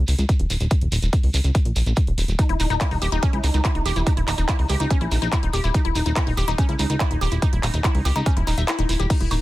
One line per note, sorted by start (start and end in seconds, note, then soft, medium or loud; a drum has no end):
0.07 0.14 C#2 loud
0.07 open hi-hat loud
0.07 shekere medium
0.18 0.25 C#2 medium
0.18 closed hi-hat soft
0.18 shekere medium
0.29 kick loud
0.29 closed hi-hat medium
0.29 shekere soft
0.39 0.46 D#1 medium
0.39 closed hi-hat medium
0.50 0.56 D#1 loud
0.50 open hi-hat loud
0.50 shekere loud
0.60 0.67 D#1 medium
0.60 closed hi-hat soft
0.60 shekere medium
0.70 kick loud
0.70 closed hi-hat medium
0.70 shekere soft
0.81 0.88 D#1 medium
0.81 closed hi-hat soft
0.92 0.98 D#1 loud
0.92 open hi-hat loud
0.92 shekere medium
1.02 1.09 D#1 medium
1.02 closed hi-hat soft
1.02 shekere medium
1.13 kick loud
1.13 closed hi-hat medium
1.13 shekere soft
1.23 1.30 C#2 medium
1.23 open hi-hat medium
1.34 1.40 C#2 loud
1.34 open hi-hat loud
1.34 shekere loud
1.44 1.51 C#2 medium
1.44 closed hi-hat medium
1.44 shekere medium
1.55 kick loud
1.55 closed hi-hat medium
1.55 shekere soft
1.65 1.72 A#1 medium
1.65 closed hi-hat soft
1.76 1.82 A#1 loud
1.76 open hi-hat loud
1.76 shekere medium
1.86 1.93 A#1 medium
1.86 closed hi-hat soft
1.86 shekere soft
1.96 kick loud
1.96 closed hi-hat medium
1.96 shekere soft
2.07 2.14 D#1 medium
2.07 closed hi-hat soft
2.18 2.24 D#1 loud
2.18 open hi-hat loud
2.18 shekere medium
2.28 2.35 D#1 medium
2.28 closed hi-hat soft
2.28 shekere soft
2.39 2.43 D#4 medium
2.39 kick loud
2.39 closed hi-hat medium
2.39 shekere soft
2.49 2.56 D#1 medium
2.49 2.53 E4 medium
2.49 closed hi-hat soft
2.60 2.66 D#1 loud
2.60 2.63 D#4 medium
2.60 open hi-hat loud
2.60 shekere medium
2.70 2.77 D#1 loud
2.70 2.74 D#4 medium
2.70 closed hi-hat soft
2.70 shekere soft
2.80 2.83 E4 loud
2.80 kick loud
2.80 clap loud
2.80 closed hi-hat medium
2.80 shekere soft
2.91 2.98 D#1 medium
2.91 2.95 D#4 medium
2.91 open hi-hat medium
3.02 3.08 D#1 loud
3.02 3.04 G4 loud
3.02 open hi-hat loud
3.02 shekere medium
3.12 3.19 D#1 medium
3.12 3.14 D#4 loud
3.12 closed hi-hat soft
3.12 shekere medium
3.22 3.25 C#4 loud
3.22 kick loud
3.22 closed hi-hat medium
3.22 shekere soft
3.33 3.40 C#2 medium
3.33 3.37 E4 medium
3.33 closed hi-hat soft
3.44 3.50 C#2 loud
3.44 3.47 D#4 medium
3.44 open hi-hat loud
3.44 shekere medium
3.54 3.61 C#2 medium
3.54 3.58 D#4 medium
3.54 closed hi-hat soft
3.54 shekere medium
3.65 3.67 E4 loud
3.65 kick loud
3.65 clap loud
3.65 closed hi-hat medium
3.65 shekere soft
3.75 3.82 D#1 medium
3.75 3.79 D#4 medium
3.75 closed hi-hat soft
3.86 3.92 D#1 loud
3.86 3.88 G4 loud
3.86 open hi-hat loud
3.86 shekere medium
3.96 4.03 D#1 medium
3.96 3.98 E4 medium
3.96 closed hi-hat soft
3.96 shekere medium
4.06 4.10 D#4 medium
4.06 kick loud
4.06 closed hi-hat medium
4.06 shekere soft
4.17 4.23 D#1 medium
4.17 4.21 E4 medium
4.17 closed hi-hat soft
4.28 4.34 D#1 loud
4.28 4.31 D#4 medium
4.28 clap medium
4.28 open hi-hat loud
4.28 shekere medium
4.38 4.44 D#1 medium
4.38 4.42 D#4 medium
4.38 closed hi-hat medium
4.38 shekere soft
4.49 4.51 E4 loud
4.49 kick loud
4.49 clap loud
4.49 closed hi-hat medium
4.49 shekere soft
4.59 4.65 C#2 medium
4.59 4.63 D#4 medium
4.59 open hi-hat medium
4.69 4.76 C#2 loud
4.69 4.72 G4 loud
4.69 open hi-hat loud
4.69 shekere medium
4.80 4.86 C#2 medium
4.80 4.82 D#4 loud
4.80 closed hi-hat medium
4.80 shekere soft
4.90 4.93 C#4 loud
4.90 kick loud
4.90 closed hi-hat medium
4.90 shekere soft
5.01 5.07 A#1 medium
5.01 5.05 E4 medium
5.01 closed hi-hat soft
5.11 5.18 A#1 medium
5.11 5.15 D#4 medium
5.11 open hi-hat loud
5.11 shekere medium
5.22 5.28 A#1 medium
5.22 5.26 D#4 medium
5.22 closed hi-hat medium
5.22 shekere soft
5.32 5.35 E4 loud
5.32 kick loud
5.32 clap loud
5.32 closed hi-hat medium
5.32 shekere soft
5.43 5.49 D#1 medium
5.43 5.47 D#4 medium
5.43 closed hi-hat medium
5.53 5.60 D#1 loud
5.53 5.56 G4 loud
5.53 open hi-hat loud
5.53 shekere medium
5.64 5.70 D#1 medium
5.64 5.66 E4 medium
5.64 closed hi-hat medium
5.64 shekere medium
5.74 5.78 D#4 medium
5.74 kick loud
5.74 closed hi-hat medium
5.74 shekere soft
5.85 5.91 D#1 medium
5.85 5.89 E4 medium
5.85 closed hi-hat medium
5.95 6.02 D#1 loud
5.95 5.99 D#4 medium
5.95 open hi-hat loud
5.95 shekere medium
6.06 6.12 D#1 loud
6.06 6.10 D#4 medium
6.06 closed hi-hat medium
6.06 shekere soft
6.16 6.19 E4 loud
6.16 kick loud
6.16 clap loud
6.16 closed hi-hat medium
6.16 shekere soft
6.27 6.33 D#1 medium
6.27 6.31 D#4 medium
6.27 open hi-hat medium
6.37 6.44 D#1 loud
6.37 6.40 G4 loud
6.37 open hi-hat loud
6.37 shekere medium
6.48 6.54 D#1 medium
6.48 6.50 D#4 loud
6.48 closed hi-hat medium
6.48 shekere medium
6.58 6.61 C#4 loud
6.58 kick loud
6.58 closed hi-hat medium
6.58 shekere soft
6.69 6.75 C#2 medium
6.69 6.73 E4 medium
6.69 closed hi-hat medium
6.79 6.86 C#2 loud
6.79 6.83 D#4 medium
6.79 open hi-hat loud
6.79 shekere medium
6.90 6.96 C#2 medium
6.90 6.94 D#4 medium
6.90 closed hi-hat medium
6.90 shekere soft
7.00 7.03 E4 loud
7.00 kick loud
7.00 clap loud
7.00 closed hi-hat medium
7.00 shekere soft
7.11 7.17 D#1 medium
7.11 7.15 D#4 medium
7.11 closed hi-hat medium
7.21 7.28 D#1 loud
7.21 7.24 G4 loud
7.21 open hi-hat loud
7.21 shekere medium
7.31 7.38 D#1 medium
7.31 7.34 E4 medium
7.31 closed hi-hat medium
7.31 shekere soft
7.42 7.46 D#4 medium
7.42 kick loud
7.42 closed hi-hat loud
7.42 shekere soft
7.53 7.59 D#1 medium
7.53 7.57 E4 medium
7.53 closed hi-hat medium
7.63 7.70 D#1 loud
7.63 7.67 D#4 medium
7.63 clap medium
7.63 open hi-hat loud
7.63 shekere medium
7.73 7.80 D#1 medium
7.73 7.78 D#4 medium
7.73 closed hi-hat medium
7.73 shekere soft
7.84 7.86 E4 loud
7.84 kick loud
7.84 clap loud
7.84 closed hi-hat loud
7.84 shekere soft
7.95 8.01 C#2 medium
7.95 7.98 D#4 medium
7.95 open hi-hat medium
8.05 8.12 C#2 loud
8.05 8.07 G4 loud
8.05 open hi-hat loud
8.05 shekere medium
8.16 8.22 C#2 medium
8.16 8.18 D#4 loud
8.16 closed hi-hat medium
8.16 shekere medium
8.26 8.28 C#4 loud
8.26 kick loud
8.26 closed hi-hat loud
8.26 shekere soft
8.37 8.43 D#1 medium
8.37 8.40 E4 medium
8.37 closed hi-hat medium
8.47 8.54 D#1 loud
8.47 8.51 D#4 loud
8.47 open hi-hat loud
8.47 shekere medium
8.58 8.64 D#1 medium
8.58 8.61 E5 medium
8.58 closed hi-hat medium
8.58 shekere soft
8.68 8.72 E4 loud
8.68 clap loud
8.68 closed hi-hat medium
8.68 shekere soft
8.79 8.85 D#1 medium
8.79 8.81 D#4 medium
8.79 closed hi-hat medium
8.89 8.96 D#1 loud
8.89 8.93 E4 medium
8.89 open hi-hat medium
8.89 shekere medium
9.00 9.06 D#1 medium
9.00 9.03 G4 medium
9.00 closed hi-hat medium
9.00 shekere medium
9.10 9.41 A#3 medium
9.10 9.14 D#4 medium
9.10 9.41 A#4 medium
9.10 kick loud
9.10 closed hi-hat loud
9.10 crash medium
9.10 shekere soft
9.21 9.27 D#1 medium
9.21 9.24 E4 medium
9.21 closed hi-hat medium
9.31 9.37 D#1 loud
9.31 9.35 D#4 medium
9.31 open hi-hat loud
9.31 high woodblock soft
9.31 shekere medium